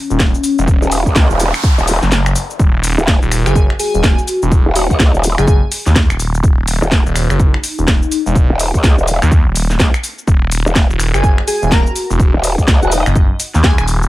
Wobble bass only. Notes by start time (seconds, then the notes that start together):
0.82 D#1
1.06 C#2
1.30 D#1
1.78 D#1
2.98 D#1
4.66 D#1
4.90 C#2
5.14 D#1
6.82 D#1
8.50 D#1
8.74 C#2
8.98 D#1
9.79 C#2
10.66 D#1
12.34 D#1
12.58 C#2
12.82 D#1